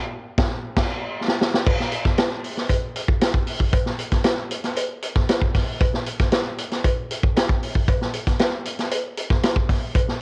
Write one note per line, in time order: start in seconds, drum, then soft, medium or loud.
0.38 kick loud
0.38 snare loud
0.76 kick loud
0.76 snare loud
0.76 crash medium
1.28 snare medium
1.41 snare loud
1.54 snare medium
1.66 kick loud
1.66 crash loud
1.66 cowbell medium
1.80 snare soft
1.92 closed hi-hat medium
2.05 kick medium
2.05 snare soft
2.18 snare medium
2.18 closed hi-hat medium
2.18 cowbell medium
2.44 open hi-hat medium
2.57 snare soft
2.69 kick medium
2.69 closed hi-hat medium
2.69 cowbell medium
2.96 closed hi-hat medium
3.08 kick loud
3.21 snare loud
3.21 closed hi-hat loud
3.21 cowbell medium
3.34 kick medium
3.47 open hi-hat medium
3.60 kick medium
3.73 kick loud
3.73 closed hi-hat loud
3.73 cowbell medium
3.86 snare soft
3.99 closed hi-hat medium
4.12 kick medium
4.12 snare soft
4.12 closed hi-hat medium
4.24 snare medium
4.24 closed hi-hat medium
4.24 cowbell medium
4.51 closed hi-hat medium
4.64 snare soft
4.64 closed hi-hat medium
4.76 closed hi-hat loud
4.76 cowbell medium
5.02 closed hi-hat medium
5.15 kick loud
5.15 snare soft
5.29 snare loud
5.29 closed hi-hat loud
5.29 cowbell medium
5.42 kick medium
5.54 kick medium
5.54 snare soft
5.54 open hi-hat medium
5.80 kick loud
5.80 closed hi-hat loud
5.80 cowbell medium
5.94 snare soft
6.06 closed hi-hat medium
6.19 kick medium
6.19 snare soft
6.19 closed hi-hat medium
6.32 snare medium
6.32 closed hi-hat medium
6.32 cowbell medium
6.58 closed hi-hat medium
6.71 snare soft
6.71 closed hi-hat soft
6.84 kick medium
6.84 closed hi-hat medium
6.84 cowbell medium
7.10 closed hi-hat medium
7.23 kick loud
7.37 snare loud
7.37 closed hi-hat loud
7.37 cowbell medium
7.49 kick medium
7.63 open hi-hat medium
7.75 kick medium
7.88 kick loud
7.88 closed hi-hat loud
7.88 cowbell medium
8.01 snare soft
8.13 closed hi-hat medium
8.27 kick medium
8.27 snare soft
8.27 closed hi-hat medium
8.39 snare medium
8.39 closed hi-hat medium
8.39 cowbell loud
8.65 closed hi-hat medium
8.79 snare soft
8.79 closed hi-hat soft
8.91 closed hi-hat loud
8.91 cowbell medium
9.17 closed hi-hat medium
9.30 kick loud
9.30 snare soft
9.43 snare loud
9.43 closed hi-hat loud
9.43 cowbell medium
9.56 kick loud
9.69 kick loud
9.69 snare soft
9.69 open hi-hat medium
9.95 kick loud
9.95 closed hi-hat loud
9.95 cowbell medium
10.08 snare soft